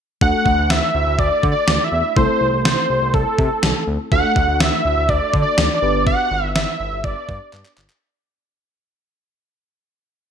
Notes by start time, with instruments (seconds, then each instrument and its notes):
0.21 analog synth bass D2, fm electric piano A3 D4 F#4 A4, analog synth lead F#5, kick
0.46 analog synth bass D2, kick
0.58 analog synth bass D2
0.70 analog synth bass D2, analog synth lead E5, snare
0.95 analog synth bass D2
1.07 analog synth bass D2
1.19 analog synth bass D2, analog synth lead D5, kick
1.43 analog synth bass D3, kick
1.51 analog synth lead D5
1.68 analog synth bass D2, snare
1.84 analog synth lead E5
1.92 analog synth bass E2
2.16 analog synth bass C2, fm electric piano A3 C4 E4 A4, analog synth lead C5, kick
2.41 analog synth bass C2
2.53 analog synth bass C2
2.65 analog synth bass C2, analog synth lead C5, snare
2.90 analog synth bass C2
3.02 analog synth bass C2
3.14 analog synth bass C2, analog synth lead A4, kick
3.38 analog synth bass C3, kick
3.63 analog synth bass C2, snare
3.87 analog synth bass D2
4.12 analog synth bass D2, fm electric piano A3 D4 F#4 A4, analog synth lead F#5, kick
4.36 analog synth bass D2, kick
4.48 analog synth bass D2
4.60 analog synth bass D2, analog synth lead E5, snare
4.85 analog synth bass D2
4.97 analog synth bass D2
5.09 analog synth bass D2, analog synth lead D5, kick
5.34 analog synth bass D3, kick
5.42 analog synth lead D5
5.58 analog synth bass D2, snare
5.75 analog synth lead D5
5.82 analog synth bass G1, fm electric piano B3 D4 G4 B4
6.07 analog synth lead F#5, kick
6.31 analog synth bass G1
6.43 analog synth bass G1
6.55 analog synth bass G1, analog synth lead E5, snare
6.80 analog synth bass G1
6.92 analog synth bass G1
7.04 analog synth bass G1, analog synth lead D5, kick
7.29 analog synth bass G2, kick
7.53 analog synth bass G2, clap
7.65 clap
7.77 analog synth bass G1, clap
7.90 clap